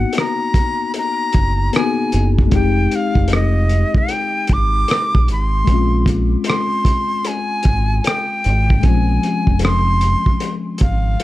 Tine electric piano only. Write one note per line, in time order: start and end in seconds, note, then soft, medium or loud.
0.00 1.68 A#3 medium
0.00 1.69 B3 soft
0.00 1.71 D#4 medium
0.00 1.72 F#4 medium
1.73 2.52 A#3 soft
1.73 2.53 B3 soft
1.73 2.52 D#4 soft
1.77 1.83 F#4 soft
1.84 2.57 G#4 soft
2.47 5.61 G#3 medium
2.47 5.63 C4 soft
2.53 5.64 D#4 soft
2.53 5.66 G4 medium
5.64 8.78 G#3 medium
5.64 8.80 C4 soft
5.70 8.81 C#4 soft
5.70 8.83 F4 medium
8.80 11.23 G#3 medium
8.80 11.23 C4 soft
8.86 11.23 F3 medium
8.86 11.23 C#4 medium